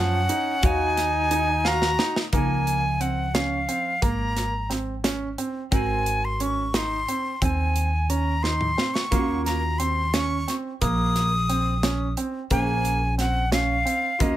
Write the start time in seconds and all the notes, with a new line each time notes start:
Already playing: F#2 F3 A#4 F#5
0.00 C#4
0.29 D#4, closed hi-hat
0.62 D#2 D#4 F#4 C#5 F5 G#5, kick, closed hi-hat
0.97 snare, closed hi-hat
1.31 D#4, closed hi-hat
1.65 F#4 F5 A#5, snare
1.82 snare
1.99 D#4, snare
2.16 snare
2.32 C#2 F3 A#3 D#4 A#4 G#5, kick, closed hi-hat
2.67 closed hi-hat
3.00 C4 F#5, closed hi-hat
3.34 C#4 F5, snare, closed hi-hat
3.68 C4, closed hi-hat
4.02 G#1 A#3 A#5, kick, closed hi-hat
4.37 snare, closed hi-hat
4.70 C4, snare, closed hi-hat
5.04 C#4, snare, closed hi-hat
5.38 C4, closed hi-hat
5.71 G#1 C4 F#4 A#4 G#5, kick, closed hi-hat
6.06 closed hi-hat
6.25 C6
6.40 C#4 C#6, closed hi-hat
6.74 D#4 C6, snare, closed hi-hat
7.08 C4, closed hi-hat
7.42 D#2 C4 G#5, kick, closed hi-hat
7.76 closed hi-hat
8.10 C#4 A#5, closed hi-hat
8.43 D#4 C6, snare
8.61 mid tom
8.78 C4, snare
8.94 C#6, snare
9.11 D#2 A#3 C#4 F4 F#4, kick, closed hi-hat
9.45 A#5, snare, closed hi-hat
9.79 C4 C6, closed hi-hat
10.14 C#4 C#6, snare, closed hi-hat
10.48 C4, snare, closed hi-hat
10.81 A#1 A#3 D#6, kick, closed hi-hat
11.16 snare, closed hi-hat
11.49 C4, closed hi-hat
11.83 C#4, snare, closed hi-hat
12.17 C4, closed hi-hat
12.50 A#1 A#3 C#4 G#4 C5 G#5, kick, closed hi-hat
12.85 closed hi-hat
13.18 C4 F#5, snare, closed hi-hat
13.52 C#4 F5, snare, closed hi-hat
13.85 C4, closed hi-hat
14.19 D#2 A#3 C#4 F4 F#4 D#5, kick, closed hi-hat